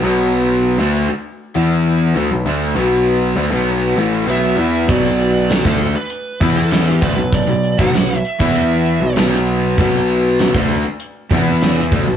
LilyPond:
<<
  \new Staff \with { instrumentName = "Lead electric guitar" } { \time 4/4 \key b \minor \tempo 4 = 98 r1 | r2. e''4 | d''4 a'8. b'4 a'8. b'8 | d''8. fis''8. e''4. r4 |
r1 | }
  \new Staff \with { instrumentName = "Distorted electric guitar" } { \clef bass \time 4/4 \key b \minor <b, fis b>4~ <b, fis b>16 <d a d'>8 r8. <e b e'>4 <d a>16 <b, fis>16 | <d a d'>8 <b, fis b>4 <d a>16 <b, fis b>8. <a, e a>8 <b, fis b>8 <e b e'>8 | <b, fis b>4~ <b, fis b>16 <d a d'>8 r8. <e b e'>4 <d a>16 <b, fis>16~ | <b, fis>16 <b, fis>8 <b, fis>16 <b, fis>8 r16 <e b e'>4 <b, fis>16 <b, fis b>4 |
<b, fis b>4~ <b, fis b>16 <d a d'>8 r8. <e b e'>4 <d a>16 <b, fis>16 | }
  \new Staff \with { instrumentName = "Overdriven electric guitar" } { \clef bass \time 4/4 \key b \minor <b, fis b>4~ <b, fis b>16 <d a d'>8 r8. <e b e'>4 <d a>16 <b, fis>16 | <d a d'>8 <b, fis b>4 <d a>16 <b, fis b>8. <a, e a>8 <b, fis b>8 <e b e'>8 | <b, fis b>4~ <b, fis b>16 <d a d'>8 r8. <e b e'>4 <d a>16 <b, fis>16~ | <b, fis>16 <b, fis>8 <b, fis>16 <b, fis>8 r16 <e b e'>4 <b, fis>16 <b, fis b>4 |
<b, fis b>4~ <b, fis b>16 <d a d'>8 r8. <e b e'>4 <d a>16 <b, fis>16 | }
  \new Staff \with { instrumentName = "Picked electric bass" } { \clef bass \time 4/4 \key b \minor b,,4~ b,,16 d,8 r8. e,4 d,16 b,,16 | d,8 b,,4 d,16 b,,8. a,,8 b,,8 e,8 | b,,4~ b,,16 d,8 r8. e,4 d,16 b,,16~ | b,,16 b,,8 b,,16 b,,8 r16 e,4 b,,16 b,,4 |
b,,4~ b,,16 d,8 r8. e,4 d,16 b,,16 | }
  \new DrumStaff \with { instrumentName = "Drums" } \drummode { \time 4/4 r4 r4 r4 r4 | r4 r4 r4 r4 | <hh bd>8 hh8 <hh sn>16 bd16 hh8 hh8 <hh bd>8 <hh sn>8 <hh bd>8 | <hh bd>8 hh16 bd16 <hh sn>8 hh16 bd16 hh8 hh8 <hh sn>8 hh8 |
<hh bd>8 hh8 <hh sn>16 bd16 hh8 hh8 <hh bd>8 <hh sn>8 <hh bd>8 | }
>>